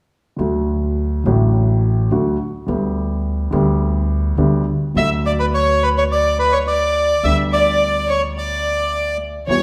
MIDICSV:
0, 0, Header, 1, 5, 480
1, 0, Start_track
1, 0, Key_signature, 2, "major"
1, 0, Tempo, 571429
1, 334, Time_signature, 4, 2, 24, 8
1, 5610, Tempo, 561272
1, 8131, End_track
2, 0, Start_track
2, 0, Title_t, "Bandoneon"
2, 0, Program_c, 0, 23
2, 4177, Note_on_c, 0, 76, 79
2, 4283, Note_off_c, 0, 76, 0
2, 4418, Note_on_c, 0, 74, 76
2, 4470, Note_off_c, 0, 74, 0
2, 4531, Note_on_c, 0, 71, 63
2, 4585, Note_off_c, 0, 71, 0
2, 4657, Note_on_c, 0, 73, 76
2, 4897, Note_on_c, 0, 71, 70
2, 4901, Note_off_c, 0, 73, 0
2, 4949, Note_off_c, 0, 71, 0
2, 5020, Note_on_c, 0, 73, 73
2, 5072, Note_off_c, 0, 73, 0
2, 5139, Note_on_c, 0, 74, 80
2, 5358, Note_off_c, 0, 74, 0
2, 5370, Note_on_c, 0, 71, 71
2, 5479, Note_on_c, 0, 73, 71
2, 5493, Note_off_c, 0, 71, 0
2, 5535, Note_off_c, 0, 73, 0
2, 5606, Note_on_c, 0, 74, 83
2, 6091, Note_on_c, 0, 76, 73
2, 6105, Note_off_c, 0, 74, 0
2, 6199, Note_off_c, 0, 76, 0
2, 6336, Note_on_c, 0, 74, 74
2, 6824, Note_on_c, 0, 73, 68
2, 6827, Note_off_c, 0, 74, 0
2, 6930, Note_off_c, 0, 73, 0
2, 7067, Note_on_c, 0, 74, 78
2, 7744, Note_off_c, 0, 74, 0
2, 8033, Note_on_c, 0, 73, 89
2, 8131, Note_off_c, 0, 73, 0
2, 8131, End_track
3, 0, Start_track
3, 0, Title_t, "Violin section"
3, 0, Program_c, 1, 48
3, 4176, Note_on_c, 1, 76, 62
3, 4282, Note_off_c, 1, 76, 0
3, 4422, Note_on_c, 1, 74, 58
3, 4473, Note_off_c, 1, 74, 0
3, 4545, Note_on_c, 1, 71, 59
3, 4595, Note_off_c, 1, 71, 0
3, 4658, Note_on_c, 1, 73, 64
3, 4878, Note_off_c, 1, 73, 0
3, 4902, Note_on_c, 1, 71, 54
3, 4953, Note_off_c, 1, 71, 0
3, 5018, Note_on_c, 1, 73, 64
3, 5070, Note_off_c, 1, 73, 0
3, 5134, Note_on_c, 1, 74, 64
3, 5355, Note_off_c, 1, 74, 0
3, 5381, Note_on_c, 1, 71, 57
3, 5487, Note_off_c, 1, 71, 0
3, 5492, Note_on_c, 1, 73, 58
3, 5546, Note_off_c, 1, 73, 0
3, 5612, Note_on_c, 1, 74, 59
3, 6060, Note_off_c, 1, 74, 0
3, 6093, Note_on_c, 1, 76, 65
3, 6200, Note_off_c, 1, 76, 0
3, 6332, Note_on_c, 1, 74, 60
3, 6777, Note_off_c, 1, 74, 0
3, 6809, Note_on_c, 1, 73, 58
3, 6918, Note_off_c, 1, 73, 0
3, 7047, Note_on_c, 1, 74, 55
3, 7734, Note_off_c, 1, 74, 0
3, 8008, Note_on_c, 1, 73, 74
3, 8131, Note_off_c, 1, 73, 0
3, 8131, End_track
4, 0, Start_track
4, 0, Title_t, "Grand piano"
4, 0, Program_c, 2, 0
4, 306, Note_on_c, 2, 50, 50
4, 319, Note_off_c, 2, 50, 0
4, 319, Note_on_c, 2, 54, 48
4, 323, Note_on_c, 2, 38, 68
4, 324, Note_on_c, 2, 50, 60
4, 332, Note_on_c, 2, 57, 46
4, 339, Note_on_c, 2, 66, 56
4, 1017, Note_off_c, 2, 54, 0
4, 1019, Note_off_c, 2, 38, 0
4, 1019, Note_off_c, 2, 50, 0
4, 1023, Note_off_c, 2, 57, 0
4, 1027, Note_off_c, 2, 66, 0
4, 1040, Note_on_c, 2, 50, 54
4, 1053, Note_on_c, 2, 54, 51
4, 1058, Note_on_c, 2, 45, 69
4, 1061, Note_on_c, 2, 33, 75
4, 1064, Note_on_c, 2, 57, 51
4, 1076, Note_on_c, 2, 66, 60
4, 1735, Note_off_c, 2, 50, 0
4, 1741, Note_off_c, 2, 54, 0
4, 1744, Note_off_c, 2, 45, 0
4, 1745, Note_off_c, 2, 33, 0
4, 1747, Note_off_c, 2, 57, 0
4, 1752, Note_off_c, 2, 66, 0
4, 1777, Note_on_c, 2, 57, 53
4, 1778, Note_on_c, 2, 38, 65
4, 1778, Note_on_c, 2, 50, 60
4, 1779, Note_on_c, 2, 54, 46
4, 1783, Note_on_c, 2, 66, 66
4, 1979, Note_off_c, 2, 38, 0
4, 1979, Note_off_c, 2, 54, 0
4, 1979, Note_off_c, 2, 57, 0
4, 1980, Note_off_c, 2, 50, 0
4, 1982, Note_off_c, 2, 66, 0
4, 2238, Note_on_c, 2, 50, 60
4, 2249, Note_on_c, 2, 55, 56
4, 2250, Note_off_c, 2, 50, 0
4, 2255, Note_on_c, 2, 50, 63
4, 2256, Note_on_c, 2, 38, 61
4, 2260, Note_on_c, 2, 59, 57
4, 2270, Note_on_c, 2, 67, 60
4, 2930, Note_off_c, 2, 55, 0
4, 2933, Note_off_c, 2, 38, 0
4, 2933, Note_off_c, 2, 50, 0
4, 2935, Note_off_c, 2, 59, 0
4, 2940, Note_off_c, 2, 67, 0
4, 2946, Note_on_c, 2, 50, 67
4, 2959, Note_off_c, 2, 50, 0
4, 2959, Note_on_c, 2, 55, 63
4, 2964, Note_on_c, 2, 38, 75
4, 2964, Note_on_c, 2, 50, 69
4, 2970, Note_on_c, 2, 59, 57
4, 2982, Note_on_c, 2, 67, 62
4, 3644, Note_off_c, 2, 55, 0
4, 3646, Note_off_c, 2, 38, 0
4, 3646, Note_off_c, 2, 50, 0
4, 3649, Note_off_c, 2, 59, 0
4, 3655, Note_off_c, 2, 67, 0
4, 3679, Note_on_c, 2, 55, 58
4, 3680, Note_on_c, 2, 50, 74
4, 3682, Note_on_c, 2, 59, 53
4, 3684, Note_on_c, 2, 38, 68
4, 3684, Note_on_c, 2, 67, 64
4, 3884, Note_off_c, 2, 55, 0
4, 3885, Note_off_c, 2, 59, 0
4, 3886, Note_off_c, 2, 38, 0
4, 3886, Note_off_c, 2, 50, 0
4, 3886, Note_off_c, 2, 67, 0
4, 4151, Note_on_c, 2, 50, 46
4, 4161, Note_on_c, 2, 54, 49
4, 4164, Note_off_c, 2, 50, 0
4, 4167, Note_on_c, 2, 38, 58
4, 4169, Note_on_c, 2, 50, 62
4, 4176, Note_on_c, 2, 57, 46
4, 4187, Note_on_c, 2, 66, 51
4, 5994, Note_off_c, 2, 54, 0
4, 5997, Note_off_c, 2, 38, 0
4, 5998, Note_off_c, 2, 50, 0
4, 6002, Note_off_c, 2, 57, 0
4, 6007, Note_off_c, 2, 66, 0
4, 6082, Note_on_c, 2, 50, 55
4, 6094, Note_on_c, 2, 55, 45
4, 6100, Note_on_c, 2, 38, 65
4, 6105, Note_on_c, 2, 59, 46
4, 6114, Note_on_c, 2, 67, 54
4, 7915, Note_off_c, 2, 55, 0
4, 7918, Note_off_c, 2, 38, 0
4, 7918, Note_off_c, 2, 50, 0
4, 7921, Note_off_c, 2, 59, 0
4, 7925, Note_off_c, 2, 67, 0
4, 7999, Note_on_c, 2, 52, 46
4, 8011, Note_off_c, 2, 52, 0
4, 8012, Note_on_c, 2, 55, 45
4, 8016, Note_on_c, 2, 40, 60
4, 8016, Note_on_c, 2, 52, 61
4, 8020, Note_on_c, 2, 59, 52
4, 8031, Note_on_c, 2, 66, 58
4, 8131, Note_off_c, 2, 40, 0
4, 8131, Note_off_c, 2, 52, 0
4, 8131, Note_off_c, 2, 55, 0
4, 8131, Note_off_c, 2, 59, 0
4, 8131, Note_off_c, 2, 66, 0
4, 8131, End_track
5, 0, Start_track
5, 0, Title_t, "Upright bass"
5, 0, Program_c, 3, 32
5, 328, Note_on_c, 3, 38, 67
5, 1021, Note_off_c, 3, 38, 0
5, 1055, Note_on_c, 3, 33, 71
5, 1742, Note_off_c, 3, 33, 0
5, 1773, Note_on_c, 3, 38, 60
5, 1976, Note_off_c, 3, 38, 0
5, 2252, Note_on_c, 3, 38, 77
5, 2931, Note_off_c, 3, 38, 0
5, 2959, Note_on_c, 3, 38, 78
5, 3644, Note_off_c, 3, 38, 0
5, 3674, Note_on_c, 3, 38, 66
5, 3881, Note_off_c, 3, 38, 0
5, 4160, Note_on_c, 3, 38, 66
5, 5993, Note_off_c, 3, 38, 0
5, 6091, Note_on_c, 3, 38, 67
5, 7914, Note_off_c, 3, 38, 0
5, 8009, Note_on_c, 3, 40, 62
5, 8131, Note_off_c, 3, 40, 0
5, 8131, End_track
0, 0, End_of_file